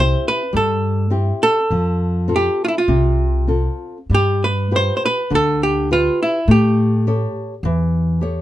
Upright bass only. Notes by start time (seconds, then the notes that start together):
Already playing: C2
0.54 G2
1.71 F2
2.88 C2
4.10 G2
5.31 D2
6.48 A2
7.63 E2